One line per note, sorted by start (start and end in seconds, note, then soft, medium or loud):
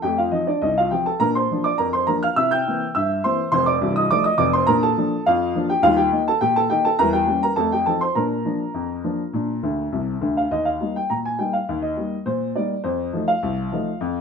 0.02 0.28 F2 medium
0.02 0.21 A3 soft
0.02 0.17 G4 medium
0.02 0.17 G5 medium
0.18 0.32 F4 medium
0.18 0.32 F5 medium
0.31 0.48 F3 soft
0.31 0.48 C4 soft
0.31 0.46 D#4 medium
0.31 0.46 D#5 medium
0.47 0.61 D4 medium
0.47 0.61 D5 medium
0.62 0.86 C2 medium
0.62 0.76 D#4 medium
0.62 0.76 D#5 medium
0.78 0.91 F4 medium
0.78 0.91 F5 medium
0.91 1.07 F3 soft
0.91 1.07 C4 soft
0.91 1.05 G4 medium
0.91 1.05 G5 medium
1.06 1.20 A4 medium
1.06 1.20 A5 medium
1.20 1.44 A#2 medium
1.20 1.37 D4 soft
1.20 1.34 A#4 medium
1.20 1.34 A#5 loud
1.35 1.62 C5 medium
1.35 1.62 C6 medium
1.51 1.66 F3 soft
1.51 1.67 A#3 soft
1.51 1.67 D4 medium
1.64 1.78 D5 medium
1.64 1.78 D6 medium
1.78 2.03 F2 medium
1.78 1.92 A#4 medium
1.78 1.92 A#5 medium
1.93 2.07 C5 medium
1.93 2.07 C6 medium
2.07 2.23 F3 soft
2.07 2.24 A#3 soft
2.07 2.24 D4 soft
2.07 2.21 A#4 medium
2.07 2.21 A#5 medium
2.23 2.36 F5 medium
2.23 2.37 F6 medium
2.36 2.61 C3 medium
2.36 2.54 E4 medium
2.36 2.50 E5 medium
2.36 2.51 E6 loud
2.51 2.92 G5 medium
2.51 2.86 G6 medium
2.67 2.83 E3 soft
2.67 2.83 A#3 soft
2.67 2.83 C4 soft
2.95 3.19 G2 medium
2.95 3.22 E5 medium
2.95 3.18 E6 medium
3.24 3.40 E3 soft
3.24 3.40 A#3 soft
3.24 3.40 C4 medium
3.24 3.51 C5 medium
3.24 3.47 C6 medium
3.52 3.75 F1 medium
3.52 3.75 F2 medium
3.52 3.66 C5 medium
3.52 3.66 C6 loud
3.66 3.94 D5 medium
3.66 3.90 D6 medium
3.81 4.04 C1 medium
3.81 4.04 C2 medium
3.96 4.10 D#5 medium
3.96 4.10 D#6 medium
4.10 4.26 F3 medium
4.10 4.26 A3 medium
4.10 4.26 D#4 medium
4.10 4.24 D5 medium
4.10 4.25 D6 loud
4.24 4.38 D#5 medium
4.24 4.39 D#6 medium
4.38 4.61 F1 medium
4.38 4.62 F2 medium
4.38 4.52 D5 medium
4.38 4.53 D6 loud
4.53 4.68 C5 medium
4.53 4.68 C6 loud
4.67 4.92 A#2 medium
4.67 4.85 D4 medium
4.67 4.81 A#4 medium
4.67 4.82 A#5 loud
4.83 5.23 A4 medium
4.83 5.24 A5 loud
4.97 5.13 F3 soft
4.97 5.13 A#3 medium
4.97 5.14 D4 medium
5.26 5.51 F2 medium
5.26 5.67 F4 medium
5.26 5.67 F5 loud
5.55 5.71 F3 soft
5.55 5.71 A#3 soft
5.55 5.72 D4 medium
5.70 5.83 G4 medium
5.70 5.84 G5 medium
5.83 6.08 D#2 loud
5.83 6.00 G3 medium
5.83 5.97 F4 medium
5.83 5.98 F5 loud
5.97 6.25 G4 medium
5.97 6.20 G5 medium
6.12 6.28 D#3 soft
6.12 6.28 A#3 medium
6.12 6.28 D#4 soft
6.28 6.42 A4 medium
6.28 6.42 A5 loud
6.41 6.66 A#2 medium
6.41 6.55 G4 medium
6.41 6.56 G5 loud
6.56 6.70 A4 medium
6.56 6.71 A5 loud
6.70 6.86 D#3 soft
6.70 6.86 A#3 medium
6.70 6.87 D#4 soft
6.70 6.84 G4 medium
6.70 6.85 G5 medium
6.85 6.99 A4 medium
6.85 6.99 A5 medium
6.99 7.24 E2 medium
6.99 7.17 G3 medium
6.99 7.13 A#4 medium
6.99 7.14 A#5 loud
7.13 7.41 G4 medium
7.13 7.41 G5 medium
7.27 7.44 G3 soft
7.27 7.44 A#3 soft
7.27 7.44 C#4 medium
7.43 7.57 A#4 medium
7.43 7.58 A#5 medium
7.56 7.82 F2 medium
7.56 7.74 A3 medium
7.56 7.71 A4 medium
7.56 7.72 A5 medium
7.72 7.87 G4 medium
7.72 7.87 G5 medium
7.86 8.03 F3 soft
7.86 8.03 C4 soft
7.86 8.03 D#4 soft
7.86 8.01 A4 medium
7.86 8.01 A5 medium
8.01 8.16 C5 medium
8.01 8.16 C6 medium
8.15 8.41 A#2 medium
8.15 8.33 D4 soft
8.15 9.89 A#4 medium
8.15 9.88 A#5 medium
8.45 8.61 F3 soft
8.45 8.62 A#3 soft
8.45 8.62 D4 soft
8.74 9.00 F2 medium
9.04 9.20 F3 soft
9.04 9.20 A#3 soft
9.04 9.21 D4 soft
9.33 9.59 A#2 medium
9.33 9.51 D4 soft
9.63 9.85 D2 medium
9.63 9.85 D3 medium
9.92 10.14 C2 medium
9.92 10.15 C3 medium
10.21 10.44 D2 medium
10.21 10.44 D3 medium
10.37 10.52 F5 medium
10.51 10.76 D#2 medium
10.51 10.66 D#5 medium
10.65 10.93 F5 medium
10.81 10.97 G3 soft
10.81 10.97 A#3 soft
10.81 10.97 D#4 soft
10.96 11.10 G5 medium
11.10 11.35 A#2 medium
11.10 11.24 A#5 medium
11.25 11.39 G#5 medium
11.39 11.55 G3 soft
11.39 11.55 A#3 soft
11.39 11.55 D#4 soft
11.39 11.53 G5 medium
11.53 11.76 F5 medium
11.69 11.93 D#2 medium
11.82 12.17 D#5 medium
11.97 12.13 G3 soft
11.97 12.14 A#3 soft
11.97 12.14 D#4 soft
12.26 12.51 A#2 medium
12.26 12.49 C5 medium
12.56 12.72 G3 soft
12.56 12.72 A#3 soft
12.56 12.72 D#4 soft
12.56 12.79 D5 medium
12.84 13.09 F2 medium
12.84 13.26 C5 medium
13.13 13.29 F3 soft
13.13 13.30 A3 soft
13.13 13.30 D#4 soft
13.28 14.21 F5 medium
13.43 13.67 C2 medium
13.72 13.88 F3 soft
13.72 13.88 A3 soft
13.72 13.89 D#4 soft
14.01 14.21 F2 medium